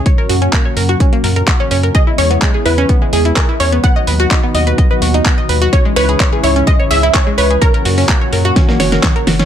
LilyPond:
<<
  \new Staff \with { instrumentName = "Synth pluck" } { \time 4/4 \key fis \mixolydian \tempo 4 = 127 r1 | dis''8 cis''4 b'4. ais'8 cis''8 | fis''4 r2. | cis''8 b'4 cis''8 dis''8 e''8 cis''8 b'8 |
ais'2.~ ais'8 r8 | }
  \new Staff \with { instrumentName = "Synth arpeggio sound" } { \time 4/4 \key fis \mixolydian cis''16 ais'16 fis'16 cis'16 ais16 cis''16 ais'16 fis'16 cis'16 ais16 ais'16 ais'16 fis''16 cis'16 cis'16 ais'16 | gis'16 e'16 cis'16 b16 gis16 gis'16 e'16 cis'16 b16 gis16 gis'16 e'16 gis'16 e'16 cis'16 b16 | b16 dis''16 b'16 fis'16 dis'16 b16 dis''16 b'16 dis''16 b'16 fis'16 dis'16 b16 dis''16 b'16 fis'16 | cis'16 gis16 cis''16 gis'16 cis''16 gis'16 e'16 cis'16 gis16 cis''16 gis'16 e'16 cis'16 gis16 cis''16 gis'16 |
cis''16 ais'16 fis'16 cis'16 ais16 cis''16 ais'16 fis'16 cis'16 ais16 cis''16 ais'16 cis''16 ais'16 fis'16 cis'16 | }
  \new Staff \with { instrumentName = "Analog synth pad" } { \clef bass \time 4/4 \key fis \mixolydian <ais, cis fis cis' fis'>1 | <e gis b e'>1 | <b, dis fis dis' fis'>1 | <gis, cis e cis' e'>1 |
<ais, cis fis cis' fis'>1 | }
  \new Staff \with { instrumentName = "Analog synth bass" } { \clef bass \time 4/4 \key fis \mixolydian r8 fis,8 r8 fis,8 r8 fis,8 r8 fis,8 | r8 e,8 r8 e,8 r8 e,8 r8 e,8 | r8 dis,8 r8 dis,8 r8 dis,8 r8 dis,8 | r8 cis,8 r8 cis,8 r8 cis,8 r8 cis,8 |
r8 fis,8 r8 fis,8 r8 fis,,8 r8 fis,,8 | }
  \new DrumStaff \with { instrumentName = "Drums" } \drummode { \time 4/4 <hh bd>8 hho16 hh16 <hc hh bd>8 hho16 hh16 <hh bd>16 hh16 hho16 hh16 <hc hh bd>8 hho16 hh16 | <hh bd>8 hho16 hh16 <hc hh bd>8 hho16 hh16 <hh bd>8 hho16 hh16 <hc hh bd>8 hho16 hh16 | <hh bd>8 hho16 hh16 <hc hh bd>8 hho16 hh16 <hh bd>8 hho16 hh16 <hc hh bd>8 hho16 hh16 | <hh bd>8 hho16 hh16 <hc hh bd>8 hho16 hh16 <hh bd>8 hho16 hh16 <hc hh bd>8 hho16 hh16 |
<hh bd>16 hh16 hho16 hho16 <hc hh bd>8 hho16 hh16 <hh bd sn>16 sn16 <hho sn>16 <hh sn>16 <hc hh bd sn>16 hh16 <hho sn>16 <hh sn>16 | }
>>